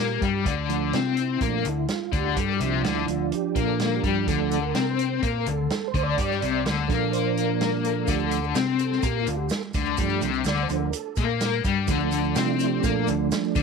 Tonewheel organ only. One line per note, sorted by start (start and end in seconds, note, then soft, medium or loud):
0.00 0.43 G4 medium
0.69 1.01 F3 medium
0.69 1.01 A3 soft
0.69 1.02 D4 medium
0.97 1.17 F4 medium
1.20 1.43 E4 medium
1.42 1.63 F3 soft
1.42 1.63 A3 soft
1.42 1.65 D4 medium
1.68 1.91 E4 medium
1.91 2.12 F4 medium
2.17 2.39 G4 medium
2.40 2.53 A4 medium
2.57 2.71 G4 medium
2.63 4.26 F3 medium
2.63 4.28 D4 medium
2.72 2.86 F4 medium
2.87 3.10 E4 medium
3.10 3.33 F4 medium
3.34 3.63 G4 medium
3.65 3.97 A4 medium
3.96 4.25 G4 medium
4.27 4.59 F3 medium
4.27 4.59 A3 soft
4.27 4.60 D4 medium
4.27 4.60 A4 medium
4.61 4.90 A#4 medium
4.90 5.23 C5 medium
5.24 5.48 A#4 medium
5.49 5.88 A4 loud
5.88 6.03 C5 medium
6.03 6.70 D5 loud
6.88 8.07 F3 soft
6.88 8.09 D4 medium
6.88 7.13 A4 medium
7.12 7.35 C5 medium
7.39 7.87 A#4 medium
7.85 8.09 A4 medium
8.09 8.40 F3 medium
8.09 8.40 A3 soft
8.09 8.41 D4 medium
8.09 8.25 G4 medium
8.24 8.46 A4 medium
8.80 9.04 A4 medium
9.06 9.19 G4 medium
9.21 9.36 F4 medium
9.37 9.52 G4 medium
9.52 9.63 A4 medium
10.00 10.31 F3 medium
10.00 10.31 A3 soft
10.00 10.32 D4 medium
10.47 10.63 D5 medium
10.62 10.77 C5 medium
10.70 10.91 F3 soft
10.70 10.91 A3 soft
10.70 10.92 D4 soft
10.79 10.95 A#4 medium
10.95 11.16 A4 medium
11.87 13.63 F3 medium
11.87 13.63 A3 medium
11.87 13.63 D4 medium
12.37 12.53 F4 medium
12.52 12.67 E4 medium
12.68 12.84 G4 medium
12.83 13.06 A4 medium